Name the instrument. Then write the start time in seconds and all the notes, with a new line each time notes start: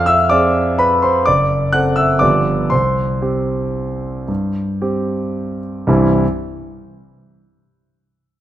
grand piano
Already playing: F2 F5 F6
0.06 E5 E6
0.30 C4 G#4 D5 D6
0.79 B4 B5
1.02 C5 C6
1.26 F#1 D5 D6
1.73 C4 A4 F#5 F#6
1.96 E5 E6
2.19 G1 F3 B3 G4 D5 D6
2.70 C2 C5 C6
3.22 C4 G4
4.28 G2
4.82 C4 G4
5.87 C2 G2 E3 G3 C4 E4